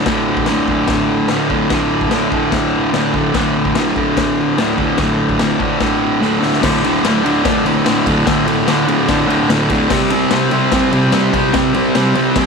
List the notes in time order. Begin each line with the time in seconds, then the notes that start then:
0.05 D2 A2 D3, kick, snare, crash
0.37 kick
0.46 D2 A2 D3, snare, crash
0.68 A2 D3, kick
0.88 kick, snare, crash
1.28 D2 A2 D3, snare, crash
1.49 A2 D3, kick
1.70 D2 A2 D3, kick, snare, crash
2.01 kick
2.10 D2 A2 D3, snare, crash
2.31 A2 D3, kick
2.52 kick, snare, crash
2.91 D2 A2 D3, snare, crash
3.14 A2 D3, kick
3.33 D2 A2 D3, kick, snare, crash
3.65 kick
3.75 D2 A2 D3, snare, crash
3.96 A2 D3, kick
4.17 kick, snare, crash
4.58 D2 A2 D3, snare, crash
4.78 A2 D3, kick
4.98 D2 A2 D3, kick, snare, crash
5.29 kick
5.39 D2 A2 D3, snare, crash
5.60 A2 D3, kick
5.80 kick, snare, crash
6.20 D2 A2 D3, snare
6.40 A2 D3, snare
6.53 snare
6.62 D2 A2 D3, kick, snare, crash
6.83 D2 A2 D3, ride
7.03 D2 A2 D3, snare, ride
7.23 D2 A2 D3, ride
7.44 D2 A2 D3, kick, snare, ride
7.65 D2 A2 D3, ride
7.85 D2 A2 D3, snare, ride
8.06 D2 A2 D3, kick, ride
8.26 D2 A2 D3, kick, snare, ride
8.46 D2 A2 D3, ride
8.67 D2 A2 D3, snare, ride
8.88 D2 A2 D3, ride
9.08 D2 A2 D3, kick, snare, ride
9.28 D2 A2 D3, ride
9.49 D2 A2 D3, snare, ride
9.70 D2 A2 D3, kick, ride
9.89 C3 G3 C4, kick, snare, crash
10.10 C3 G3 C4, ride
10.31 C3 G3 C4, snare, ride
10.51 C3 G3 C4, ride
10.72 C3 G3 C4, kick, snare, ride
10.92 C3 G3 C4, ride
11.12 C3 G3 C4, snare, ride
11.33 C3 G3 C4, kick, ride
11.53 C3 G3 C4, kick, snare, ride
11.74 C3 G3 C4, ride
11.95 C3 G3 C4, snare, ride
12.15 C3 G3 C4, ride
12.36 C3 G3 C4, kick, snare, ride